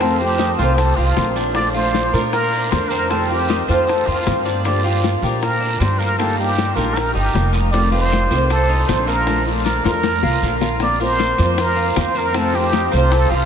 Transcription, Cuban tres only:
0.00 0.38 C4 medium
0.39 0.58 D#4 medium
0.59 0.96 C5 medium
0.97 1.35 F4 medium
1.36 1.74 D4 medium
1.74 2.12 F4 medium
2.13 2.51 A#4 medium
2.52 2.90 D4 medium
2.90 3.09 C4 medium
3.10 3.48 C4 medium
3.49 3.68 D#4 medium
3.68 4.06 C5 medium
4.07 4.45 F4 medium
4.45 4.83 D4 medium
4.84 5.21 F4 medium
5.22 5.60 A#4 medium
5.60 5.98 D4 medium
5.99 6.17 A#3 medium
6.18 6.56 A#3 medium
6.57 6.76 D4 medium
6.76 7.14 A#4 medium
7.15 7.53 D#4 medium
7.54 7.91 D#4 medium
7.92 8.29 F4 medium
8.31 8.68 C5 medium
8.69 9.07 D#4 medium
9.07 9.26 A#3 medium
9.65 9.84 D4 medium
9.84 10.22 A#4 medium
10.23 10.60 F4 medium
10.61 10.80 F4 medium
11.00 11.37 A#4 medium
11.38 11.76 C5 medium
11.76 12.14 F4 medium
12.15 12.33 C4 medium
12.34 12.72 C4 medium
12.72 12.91 D#4 medium
12.92 13.29 C5 medium
13.30 13.45 F4 medium

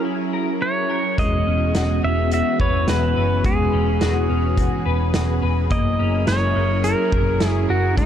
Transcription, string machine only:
0.00 1.14 F#3 medium
0.00 5.66 C#4 medium
0.00 1.14 E4 medium
0.00 1.13 G#4 medium
0.00 1.14 A#4 medium
1.17 5.66 E3 medium
1.17 5.67 B3 medium
1.17 5.67 F#4 medium
1.17 8.06 G#4 medium
5.70 7.95 F#3 medium
5.70 7.95 C#4 medium
5.70 7.95 E4 medium
5.70 7.94 A#4 medium
7.98 8.06 E3 medium
7.98 8.06 B3 medium
7.98 8.06 D4 medium
7.98 8.06 F#4 medium

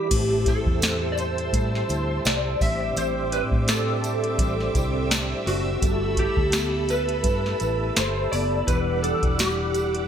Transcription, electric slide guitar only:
0.00 0.49 G4 medium
0.48 1.15 A4 medium
1.12 1.18 D5 medium
1.19 2.22 C5 medium
2.26 2.59 D5 medium
2.62 2.98 E5 loud
2.97 3.32 C5 loud
3.33 3.42 B4 loud
3.69 5.07 A4 medium
5.47 6.19 F#4 medium
6.19 6.92 G4 medium
6.90 7.96 B4 loud
7.97 8.33 C5 medium
8.32 8.69 D5 loud
8.67 9.01 B4 medium
9.03 9.39 A4 medium
9.39 10.08 G4 medium

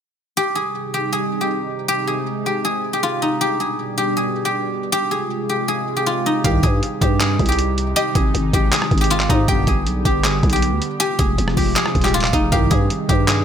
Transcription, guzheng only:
0.37 0.61 G4 loud
0.55 1.00 G#4 medium
0.94 1.19 G4 medium
1.13 1.47 G#4 medium
1.41 1.88 G4 medium
1.88 2.13 G4 loud
2.07 2.52 G#4 medium
2.46 2.71 G4 medium
2.65 2.99 G#4 medium
2.93 3.41 G4 medium
3.03 5.55 F4 medium
3.22 5.92 D#4 medium
3.41 3.66 G4 loud
3.60 4.04 G#4 medium
3.98 4.23 G4 medium
4.17 4.51 G#4 medium
4.45 4.92 G4 medium
4.92 5.17 G4 loud
5.11 5.55 G#4 medium
5.49 5.74 G4 medium
5.68 6.03 G#4 medium
5.97 6.44 G4 medium
6.06 8.59 F4 medium
6.26 8.96 D#4 medium
6.45 6.69 G4 loud
6.63 7.08 G#4 medium
7.02 7.26 G4 medium
7.20 7.55 G#4 medium
7.49 7.96 G4 medium
7.96 8.21 G4 loud
8.15 8.60 G#4 medium
8.54 8.78 G4 medium
8.72 9.07 G#4 medium
9.01 9.48 G4 medium
9.11 11.63 F4 medium
9.30 12.00 D#4 medium
9.49 9.74 G4 loud
9.68 10.11 G#4 medium
10.05 10.30 G4 medium
10.24 10.59 G#4 medium
10.53 10.99 G4 medium
11.00 11.25 G4 loud
11.19 11.63 G#4 medium
11.57 11.82 G4 medium
11.76 12.10 G#4 medium
12.04 12.52 G4 medium
12.14 13.45 F4 medium
12.34 13.45 D#4 medium
12.52 12.77 G4 loud
12.71 13.15 G#4 medium
13.09 13.34 G4 medium
13.28 13.45 G#4 medium

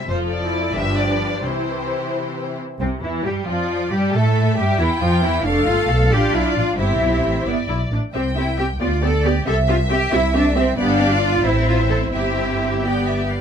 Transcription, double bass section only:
0.09 0.51 F1 medium
0.76 1.17 G1 medium
1.43 1.86 C2 soft
2.80 2.88 C2 medium
3.02 3.24 E2 medium
3.25 3.33 G2 medium
3.46 3.90 F2 medium
3.91 3.99 G2 medium
4.13 4.57 A2 medium
4.57 4.79 G2 medium
4.79 4.87 E2 medium
5.01 5.23 F2 medium
5.23 5.45 E2 medium
5.45 5.65 F1 medium
5.67 5.75 G1 medium
5.88 6.10 B1 medium
6.11 6.33 A1 medium
6.33 6.41 B1 medium
6.56 6.64 A1 medium
6.78 7.00 G1 medium
7.01 7.23 B1 medium
7.24 7.46 A1 medium
7.46 7.54 G1 medium
7.69 7.91 B1 soft
7.91 7.99 A1 medium
8.14 8.72 C2 medium
8.80 9.39 D2 medium
9.47 10.05 C2 medium
10.13 10.71 C2 medium
10.79 11.42 G1 medium
11.46 12.14 A1 medium
12.13 13.28 G1 medium

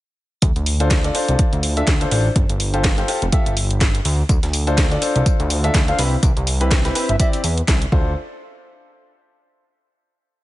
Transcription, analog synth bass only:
0.42 0.52 D2 loud
0.56 1.10 D2 medium
1.29 1.36 C2 medium
1.53 1.82 D2 loud
1.87 2.05 D2 medium
2.12 2.29 A1 medium
2.36 2.45 G1 loud
2.50 3.03 G1 medium
3.22 3.29 F1 medium
3.46 4.00 G1 medium
4.05 4.23 D2 loud
4.29 4.39 D2 loud
4.43 4.97 D2 medium
5.16 5.23 C2 medium
5.40 5.69 D2 loud
5.74 5.92 D2 loud
5.99 6.17 C2 medium
6.23 6.32 C2 loud
6.37 6.90 C2 medium
7.09 7.16 G1 medium
7.44 7.62 E2 medium
7.68 7.86 C2 loud
7.92 8.15 D2 medium

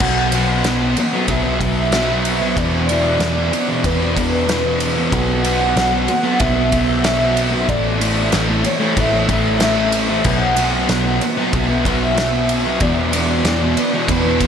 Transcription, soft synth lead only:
0.00 0.93 F#5 loud
1.30 2.60 E5 loud
2.58 3.87 D5 loud
3.85 4.48 B4 loud
4.48 4.93 B4 medium
5.11 6.41 F#5 loud
6.39 7.70 E5 loud
7.69 8.33 D5 loud
8.66 9.02 C#5 medium
9.00 9.62 E5 loud
9.63 10.07 E5 loud
10.26 11.17 F#5 loud
11.53 12.83 E5 loud
12.81 14.07 D5 loud
14.08 14.47 B4 loud

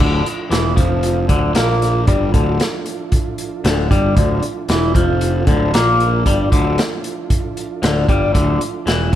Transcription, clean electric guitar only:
0.00 0.23 D2 medium
0.00 0.24 D3 medium
0.25 muted clean electric guitar stroke medium
0.49 0.75 E2 medium
0.49 0.76 E3 medium
0.76 1.28 F2 medium
0.76 1.28 F3 medium
1.28 1.54 D2 medium
1.28 1.55 D3 loud
1.55 2.07 A#2 medium
1.55 2.07 A#3 loud
2.07 2.32 G2 medium
2.07 2.33 G3 medium
2.33 2.59 D2 medium
2.33 2.59 D3 medium
3.64 3.90 D2 medium
3.64 3.90 D3 loud
3.90 4.16 G2 medium
3.90 4.16 G3 loud
4.17 4.42 D2 medium
4.17 4.43 D3 medium
4.43 muted clean electric guitar stroke medium
4.69 4.94 E2 medium
4.69 4.95 E3 loud
4.95 5.46 F2 medium
4.95 5.47 F3 medium
5.46 5.72 D2 medium
5.46 5.73 D3 medium
5.74 6.25 A#2 medium
5.74 6.25 A#3 loud
6.26 6.51 G2 medium
6.26 6.51 G3 medium
6.52 6.77 D2 medium
6.52 6.77 D3 loud
7.82 8.08 D2 medium
7.82 8.08 D3 medium
8.09 8.33 G2 medium
8.09 8.34 G3 medium
8.34 8.60 D2 medium
8.34 8.60 D3 medium
8.61 muted clean electric guitar stroke medium
8.86 9.12 E2 medium
8.86 9.12 E3 loud

